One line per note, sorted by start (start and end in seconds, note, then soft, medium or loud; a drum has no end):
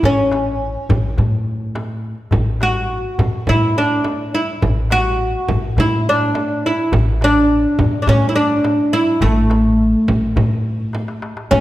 0.03 0.75 A1 medium
0.03 1.15 C#4 medium
0.03 darbuka dum medium
0.03 frame drum medium
0.17 darbuka ka soft
0.31 darbuka tek medium
0.31 frame drum medium
0.46 darbuka ka soft
0.89 1.14 A1 medium
0.89 darbuka dum medium
0.89 frame drum medium
1.03 darbuka ka soft
1.18 2.14 A2 medium
1.18 darbuka dum medium
1.18 frame drum medium
1.32 darbuka ka soft
1.46 darbuka ka soft
1.75 darbuka tek medium
1.75 frame drum medium
1.90 darbuka ka soft
2.04 darbuka ka soft
2.18 darbuka ka soft
2.31 3.05 A1 medium
2.31 darbuka dum medium
2.31 frame drum medium
2.47 darbuka ka soft
2.61 3.49 F#4 medium
2.61 darbuka tek medium
2.61 frame drum medium
2.76 darbuka ka soft
3.19 3.31 E2 medium
3.19 darbuka dum medium
3.19 frame drum medium
3.33 darbuka ka soft
3.47 4.44 A2 medium
3.47 3.77 E4 medium
3.47 frame drum medium
3.47 darbuka dum medium
3.61 darbuka ka soft
3.78 4.34 D4 medium
4.04 darbuka tek medium
4.04 frame drum medium
4.19 darbuka ka soft
4.34 4.61 E4 medium
4.62 5.34 A1 medium
4.62 darbuka dum medium
4.62 frame drum medium
4.76 darbuka ka soft
4.90 5.79 F#4 medium
4.90 darbuka tek medium
4.90 frame drum medium
5.05 darbuka ka soft
5.48 5.73 A1 medium
5.48 frame drum medium
5.48 darbuka dum medium
5.62 darbuka ka soft
5.77 6.73 A2 medium
5.77 6.08 E4 medium
5.77 darbuka dum medium
5.77 frame drum medium
5.91 darbuka ka soft
6.09 6.66 D4 medium
6.35 darbuka tek medium
6.35 frame drum medium
6.50 darbuka ka soft
6.66 6.92 E4 medium
6.92 7.64 A1 medium
6.92 darbuka dum medium
6.92 frame drum medium
7.07 darbuka ka soft
7.21 8.01 D4 medium
7.21 darbuka tek medium
7.21 frame drum medium
7.36 darbuka ka soft
7.79 7.91 E2 medium
7.79 frame drum medium
7.79 darbuka dum medium
7.94 darbuka ka soft
8.02 8.08 D4 medium
8.07 9.03 A2 medium
8.07 8.28 C#4 medium
8.07 darbuka dum medium
8.07 frame drum medium
8.21 darbuka ka soft
8.29 8.35 E4 medium
8.36 8.93 D4 medium
8.64 darbuka tek medium
8.64 frame drum medium
8.78 darbuka ka soft
8.93 9.23 E4 medium
9.21 9.94 A1 medium
9.21 11.19 A3 medium
9.21 darbuka dum medium
9.21 frame drum medium
9.36 darbuka ka soft
9.50 darbuka tek medium
9.50 frame drum medium
9.64 darbuka ka soft
10.08 10.32 A1 medium
10.08 frame drum medium
10.22 darbuka ka soft
10.36 11.32 A2 medium
10.36 darbuka dum medium
10.36 frame drum medium
10.93 darbuka tek soft
10.93 frame drum medium
11.08 darbuka ka medium
11.22 darbuka tek medium
11.37 darbuka ka medium
11.51 11.60 A2 medium
11.51 11.60 C#4 medium
11.51 darbuka dum medium
11.51 frame drum medium